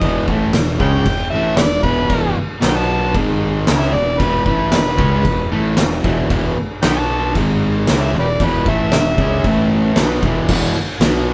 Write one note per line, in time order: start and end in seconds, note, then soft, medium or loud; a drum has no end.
0.00 0.26 E1 loud
0.00 0.27 E2 medium
0.00 0.28 B2 loud
0.00 0.25 D#5 loud
0.00 kick loud
0.00 crash medium
0.04 0.28 E3 loud
0.28 0.52 A1 loud
0.28 0.53 A2 medium
0.28 0.54 E3 loud
0.28 0.54 A3 loud
0.28 kick loud
0.53 0.78 E1 medium
0.53 0.75 E2 medium
0.53 0.75 B2 medium
0.53 snare loud
0.53 crash medium
0.78 1.04 C#2 loud
0.78 1.05 C#3 medium
0.78 1.05 G#3 medium
0.78 1.06 C#4 loud
0.78 1.30 G5 loud
0.78 kick loud
1.05 1.31 E1 medium
1.05 1.27 E2 medium
1.05 1.28 B2 medium
1.05 kick loud
1.05 crash medium
1.30 1.57 A1 medium
1.30 1.58 A2 medium
1.30 1.58 E3 loud
1.30 1.56 E5 loud
1.35 1.59 A3 loud
1.57 1.82 E1 medium
1.57 1.80 E2 medium
1.57 1.80 B2 medium
1.57 1.65 G4 medium
1.57 1.64 B4 medium
1.57 1.83 D5 loud
1.57 snare loud
1.57 crash medium
1.83 2.08 E1 medium
1.83 2.08 E2 medium
1.83 2.09 B2 medium
1.83 2.10 E3 medium
1.83 2.35 B4 loud
1.83 kick loud
2.09 2.35 E1 medium
2.09 2.35 E2 medium
2.09 2.36 B2 loud
2.09 2.37 E3 loud
2.09 kick loud
2.09 crash medium
2.36 muted distorted electric guitar stroke medium
2.36 muted fingered electric bass stroke soft
2.61 3.12 B1 medium
2.61 3.14 B2 loud
2.61 3.14 F#3 medium
2.61 3.15 B3 loud
2.61 2.78 G5 loud
2.61 snare loud
2.61 clap loud
2.61 crash medium
2.76 3.15 A5 loud
3.14 3.64 G#1 medium
3.14 3.67 G#2 medium
3.14 3.67 D#3 medium
3.14 3.67 G#3 loud
3.14 kick loud
3.14 crash medium
3.67 3.93 C#2 medium
3.67 3.93 C#3 loud
3.67 3.94 G#3 loud
3.67 3.94 C#4 loud
3.67 snare loud
3.67 clap loud
3.67 crash medium
3.79 3.95 E5 medium
3.94 4.19 E1 medium
3.94 4.15 E2 medium
3.94 4.15 B2 medium
3.94 4.21 D5 loud
4.20 4.44 E1 loud
4.20 4.45 E2 medium
4.20 4.46 B2 loud
4.20 4.46 E3 medium
4.20 4.45 B4 loud
4.20 kick loud
4.20 crash medium
4.46 4.71 A1 medium
4.46 4.72 A2 medium
4.46 4.72 E3 medium
4.46 4.73 A3 loud
4.46 5.48 B4 loud
4.46 kick medium
4.72 4.98 E1 medium
4.72 4.94 E2 medium
4.72 4.94 B2 medium
4.72 snare loud
4.72 clap loud
4.72 crash medium
4.97 5.23 C#2 medium
4.97 5.23 C#3 medium
4.97 5.24 G#3 loud
4.97 5.25 C#4 medium
4.97 kick loud
5.25 5.50 E1 medium
5.25 5.46 E2 medium
5.25 5.46 B2 medium
5.25 kick medium
5.25 crash medium
5.52 5.77 A1 medium
5.52 5.77 A2 loud
5.52 5.77 E3 medium
5.52 5.78 A3 loud
5.77 6.02 E1 medium
5.77 5.98 E2 medium
5.77 5.99 B2 medium
5.77 snare loud
5.77 clap loud
5.77 crash medium
6.02 6.29 E1 loud
6.02 6.27 E2 medium
6.02 6.29 B2 medium
6.02 6.30 E3 medium
6.02 kick loud
6.29 6.55 E1 loud
6.29 6.55 E2 loud
6.29 6.56 B2 medium
6.29 6.56 E3 medium
6.29 kick loud
6.29 crash medium
6.57 muted distorted electric guitar stroke medium
6.57 muted fingered electric bass stroke soft
6.83 7.32 B1 medium
6.83 7.34 B2 medium
6.83 7.35 F#3 medium
6.83 7.35 B3 loud
6.83 6.94 G5 loud
6.83 snare loud
6.83 clap loud
6.83 crash medium
6.95 7.33 A5 loud
7.35 7.84 G#1 medium
7.35 7.87 G#2 medium
7.35 7.87 D#3 loud
7.35 7.88 G#3 loud
7.35 kick loud
7.35 crash medium
7.87 8.13 C#2 medium
7.87 8.13 C#3 medium
7.87 8.14 G#3 loud
7.87 8.15 C#4 loud
7.87 snare loud
7.87 clap medium
7.87 crash medium
8.01 8.13 E5 loud
8.13 8.38 E1 medium
8.13 8.35 E2 medium
8.13 8.35 B2 medium
8.20 8.28 G4 medium
8.20 8.28 B4 medium
8.20 8.45 D5 loud
8.40 8.64 E1 loud
8.40 8.66 E2 medium
8.40 8.66 B2 loud
8.40 8.67 E3 loud
8.40 kick loud
8.40 crash medium
8.44 8.67 B4 loud
8.66 8.91 A1 medium
8.66 8.92 A2 medium
8.66 8.93 E3 medium
8.66 8.93 A3 loud
8.66 9.69 E5 loud
8.66 kick loud
8.92 9.17 E1 medium
8.92 9.14 E2 medium
8.92 9.14 B2 medium
8.92 snare loud
8.92 clap medium
8.92 crash medium
9.18 9.43 C#2 loud
9.18 9.44 C#3 medium
9.18 9.45 G#3 medium
9.18 9.46 C#4 medium
9.18 kick loud
9.44 9.93 A1 medium
9.44 9.98 A2 loud
9.44 9.98 E3 loud
9.44 kick loud
9.44 crash medium
9.49 9.99 A3 loud
9.96 10.21 B1 medium
9.96 10.23 B2 loud
9.96 10.24 F#3 loud
9.96 snare loud
9.96 clap medium
9.96 crash medium
10.01 10.25 B3 loud
10.23 10.48 E1 loud
10.23 10.49 E2 medium
10.23 10.50 B2 medium
10.23 10.50 E3 medium
10.23 kick loud
10.48 10.74 E1 loud
10.48 10.76 E2 loud
10.48 10.77 B2 loud
10.48 kick loud
10.48 crash loud
10.48 crash medium
10.53 10.77 E3 loud
10.76 muted fingered electric bass stroke soft
10.76 muted distorted electric guitar stroke medium
11.00 11.34 B1 medium
11.00 11.34 B2 medium
11.00 11.34 F#3 loud
11.00 snare loud
11.00 crash medium
11.04 11.34 B3 loud